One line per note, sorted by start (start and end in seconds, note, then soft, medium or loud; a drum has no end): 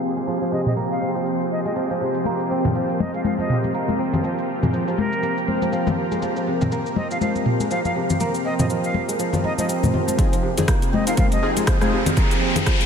0.00 0.51 C3 medium
0.00 0.26 F3 medium
0.00 10.15 F3 medium
0.00 0.16 G#3 medium
0.00 0.76 A#3 medium
0.00 1.01 C4 medium
0.00 10.15 C4 medium
0.00 10.15 G4 medium
0.00 2.24 G#4 medium
0.17 1.64 G#3 medium
0.17 cabasa medium
0.27 0.40 F3 medium
0.27 cabasa medium
0.41 0.57 F3 medium
0.41 cabasa soft
0.52 2.00 C3 medium
0.52 0.61 D#5 medium
0.66 0.73 D#5 medium
0.66 mid tom medium
0.66 cabasa medium
0.76 2.25 A#3 medium
0.76 cabasa medium
0.91 1.09 F5 medium
0.91 cabasa soft
1.01 2.50 C4 medium
1.15 1.74 F3 medium
1.15 cabasa medium
1.26 cabasa medium
1.41 cabasa soft
1.52 1.60 D#5 medium
1.65 3.13 G#3 medium
1.65 1.72 D#5 medium
1.65 cabasa medium
1.76 1.89 F3 medium
1.76 cabasa medium
1.90 2.06 F3 medium
1.90 cabasa soft
2.01 3.48 C3 medium
2.14 cabasa medium
2.25 3.74 A#3 medium
2.25 10.18 A#4 medium
2.25 muted conga soft
2.25 cabasa medium
2.40 cabasa soft
2.50 3.98 C4 medium
2.64 2.74 F3 medium
2.64 mid tom medium
2.64 muted conga soft
2.64 low conga medium
2.64 cabasa medium
2.75 3.23 F3 medium
2.75 cabasa medium
2.89 cabasa soft
3.00 3.11 D#5 medium
3.00 muted conga soft
3.00 high conga loud
3.14 4.62 G#3 medium
3.14 3.21 F5 medium
3.14 cabasa medium
3.24 3.38 F3 medium
3.24 3.34 F5 medium
3.24 high conga loud
3.24 cabasa medium
3.38 3.54 F3 medium
3.38 3.57 D#5 medium
3.38 high conga medium
3.38 cabasa soft
3.49 4.97 C3 medium
3.49 mid tom medium
3.49 muted conga soft
3.64 high conga medium
3.64 cabasa medium
3.74 5.22 A#3 medium
3.74 cabasa medium
3.88 muted conga soft
3.88 high conga medium
3.88 cabasa soft
3.99 5.47 C4 medium
4.13 4.22 F3 medium
4.13 low conga medium
4.13 cabasa medium
4.24 4.72 F3 medium
4.24 muted conga soft
4.24 cabasa medium
4.38 cabasa soft
4.63 6.10 G#3 medium
4.63 mid tom medium
4.63 muted conga soft
4.63 low conga medium
4.63 cabasa medium
4.73 4.86 F3 medium
4.73 cabasa medium
4.87 5.03 F3 medium
4.87 cabasa soft
4.98 6.46 C3 medium
4.98 5.37 A#4 medium
4.98 muted conga soft
4.98 high conga loud
5.13 cabasa medium
5.23 6.72 A#3 medium
5.23 cabasa medium
5.37 cabasa soft
5.48 6.96 C4 medium
5.48 muted conga soft
5.48 high conga medium
5.62 5.71 F3 medium
5.62 high conga medium
5.62 cabasa medium
5.72 6.21 F3 medium
5.72 cabasa medium
5.87 muted conga soft
5.87 high conga medium
5.87 low conga medium
5.87 cabasa soft
6.11 7.59 G#3 medium
6.11 high conga soft
6.11 cabasa medium
6.22 6.35 F3 medium
6.22 muted conga soft
6.22 cabasa medium
6.36 6.52 F3 medium
6.36 cabasa soft
6.47 7.95 C3 medium
6.61 mid tom medium
6.61 muted conga soft
6.61 low conga medium
6.61 cabasa medium
6.72 8.20 A#3 medium
6.72 cabasa medium
6.86 cabasa soft
6.96 8.45 C4 medium
6.96 7.08 D#5 medium
6.96 muted conga soft
6.96 high conga medium
7.11 7.20 F3 medium
7.11 7.18 F5 medium
7.11 cabasa medium
7.21 7.70 F3 medium
7.21 7.30 F5 medium
7.21 high conga medium
7.21 cabasa medium
7.35 high conga medium
7.35 cabasa soft
7.46 mid tom medium
7.46 muted conga soft
7.60 9.07 G#3 medium
7.60 high conga medium
7.60 cabasa medium
7.71 7.84 F3 medium
7.71 7.80 F5 medium
7.71 cabasa medium
7.85 8.01 F3 medium
7.85 7.92 F5 medium
7.85 muted conga medium
7.85 high conga medium
7.85 cabasa soft
7.96 10.24 C3 medium
8.10 low conga medium
8.10 cabasa medium
8.20 10.13 A#3 medium
8.20 muted conga medium
8.20 cabasa medium
8.34 cabasa soft
8.45 9.68 C4 medium
8.45 8.54 D#5 medium
8.59 8.68 F3 medium
8.59 8.66 D#5 medium
8.59 mid tom medium
8.59 muted conga soft
8.59 low conga medium
8.59 cabasa medium
8.70 9.18 F3 medium
8.70 cabasa medium
8.84 9.02 F5 medium
8.84 cabasa soft
8.94 muted conga soft
8.94 high conga medium
9.08 10.24 G#3 medium
9.08 cabasa medium
9.19 9.32 F3 medium
9.19 cabasa medium
9.33 9.57 F3 medium
9.33 low conga medium
9.33 cabasa soft
9.44 11.06 D#4 medium
9.44 9.53 D#5 medium
9.44 muted conga soft
9.44 high conga medium
9.58 10.06 F3 medium
9.58 9.65 D#5 medium
9.58 high conga medium
9.58 cabasa medium
9.68 10.92 C4 medium
9.68 cabasa medium
9.83 mid tom medium
9.83 muted conga soft
9.83 high conga medium
9.83 low conga medium
9.83 cabasa soft
9.93 11.45 F4 medium
9.93 low conga medium
10.07 10.17 F3 medium
10.07 high conga medium
10.07 cabasa medium
10.18 10.31 F3 medium
10.18 12.86 F3 medium
10.18 12.86 C4 medium
10.18 10.34 C4 medium
10.18 10.35 D#4 medium
10.18 10.34 F4 medium
10.18 12.86 G4 medium
10.18 12.86 G#4 medium
10.18 10.35 G#4 medium
10.18 kick loud
10.18 closed hi-hat soft
10.18 riser medium
10.18 muted conga soft
10.18 cabasa medium
10.32 10.49 F3 medium
10.32 closed hi-hat soft
10.32 cabasa soft
10.43 11.91 C3 medium
10.58 10.70 C4 medium
10.58 10.70 D#4 medium
10.58 10.70 F4 medium
10.58 10.70 G#4 medium
10.58 closed hi-hat soft
10.58 mid tom medium
10.58 muted conga soft
10.58 low conga medium
10.58 cabasa medium
10.68 12.17 A#3 medium
10.68 kick loud
10.68 cross-stick loud
10.68 closed hi-hat medium
10.68 cabasa medium
10.82 closed hi-hat soft
10.82 cabasa soft
10.92 12.41 C4 medium
10.92 11.05 D#5 medium
10.92 muted conga soft
10.92 high conga loud
11.07 11.16 F3 medium
11.07 11.30 C4 medium
11.07 11.30 D#4 medium
11.07 11.30 F4 medium
11.07 11.30 A#4 medium
11.07 11.14 F5 medium
11.07 closed hi-hat soft
11.07 cabasa medium
11.17 11.28 F2 loud
11.17 11.66 F3 medium
11.17 11.27 F5 medium
11.17 kick loud
11.17 closed hi-hat medium
11.17 high conga loud
11.17 cabasa medium
11.32 11.50 D#5 medium
11.32 closed hi-hat soft
11.32 high conga medium
11.32 cabasa soft
11.43 11.66 C4 medium
11.43 11.66 D#4 medium
11.43 11.66 F4 medium
11.43 11.66 G#4 medium
11.43 mid tom medium
11.43 muted conga soft
11.57 12.86 G#3 medium
11.57 closed hi-hat soft
11.57 high conga medium
11.57 cabasa medium
11.67 11.80 F3 medium
11.67 kick loud
11.67 cross-stick loud
11.67 closed hi-hat medium
11.67 cabasa medium
11.81 11.97 F3 medium
11.81 11.94 C4 medium
11.81 11.94 D#4 medium
11.81 11.94 F4 medium
11.81 11.94 G#4 medium
11.81 cross-stick medium
11.81 muted conga medium
11.81 high conga medium
11.81 cabasa soft
11.92 12.86 C3 medium
12.06 closed hi-hat soft
12.06 low conga medium
12.06 cabasa medium
12.17 12.86 A#3 medium
12.17 12.33 C4 medium
12.17 12.33 D#4 medium
12.17 12.33 F4 medium
12.17 12.33 G#4 medium
12.17 kick loud
12.17 closed hi-hat soft
12.17 muted conga soft
12.17 cabasa medium
12.31 closed hi-hat soft
12.31 cabasa soft
12.41 12.86 C4 medium
12.56 12.65 F3 medium
12.56 12.69 C4 medium
12.56 12.69 D#4 medium
12.56 12.69 F4 medium
12.56 12.69 G#4 medium
12.56 closed hi-hat soft
12.56 muted conga soft
12.56 low conga loud
12.56 cabasa medium
12.66 12.86 F3 medium
12.66 kick loud
12.66 cross-stick loud
12.66 closed hi-hat medium
12.66 cabasa medium
12.81 closed hi-hat soft
12.81 cabasa soft